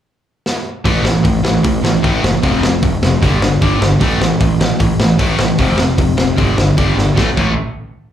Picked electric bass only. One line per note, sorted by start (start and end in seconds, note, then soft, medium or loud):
0.85 0.97 A1 medium
1.03 1.16 A1 medium
1.25 1.37 A1 medium
1.43 1.56 A1 medium
1.64 1.76 A1 medium
1.83 1.95 A1 medium
2.04 2.16 A1 medium
2.23 2.35 F#1 medium
2.43 2.68 F1 loud
2.82 2.95 F1 medium
3.03 3.15 F1 medium
3.22 3.35 G1 loud
3.40 3.53 G1 medium
3.62 3.74 G1 medium
3.81 3.93 G1 medium
4.01 4.13 A1 loud
4.20 4.33 A1 medium
4.40 4.53 A1 medium
4.60 4.72 A1 medium
4.80 4.92 A1 medium
5.00 5.12 A1 medium
5.19 5.32 A1 medium
5.38 5.51 A1 medium
5.59 5.84 F1 loud
5.98 6.11 F1 medium
6.17 6.30 F1 medium
6.38 6.50 G1 medium
6.57 6.70 G1 medium
6.78 6.90 G1 medium
6.97 7.10 G1 medium
7.17 7.28 A1 medium
7.37 7.55 A1 medium